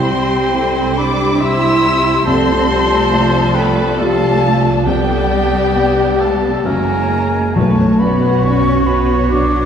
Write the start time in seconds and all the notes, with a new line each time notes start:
Already playing: C2 C3 G3 C4 E4 G4 C5 G5 C6
0.10 G4
0.54 G3 E4 A4 C5
0.97 D4 G4 D5 B5 D6
1.40 G3 E4 C5 E5 C6 E6
1.83 G4
2.25 C2 C3 F3 A3 C4 D4 A4 C5 A5 C6
2.68 G4
3.13 A3 F4 D5
3.55 B3 A4 B4 G5 B5
3.98 A3 F4 G4 A4 D5 F5 A5
4.43 F4
4.85 C2 C3 G3 B3 G4 A4 D5 G5
5.32 G4
5.75 B3 G4 D5
6.19 A3 A4 F5 A5
6.64 F#1 F#2 E3 G#3 A#3 C#4 F#4 A#4 E5 G#5 A#5
7.55 B1 B2 A3 F#4 B4 C#5 A5
7.79 C#5
7.99 F#2 B3 D5 B5
8.23 F#5
8.43 C#4 F#4 B4 D5 C#6
8.66 C#5
8.86 B3 C#4 B4 B5
9.10 C#5
9.30 D4 F#4 B4 D5 D6
9.54 F#5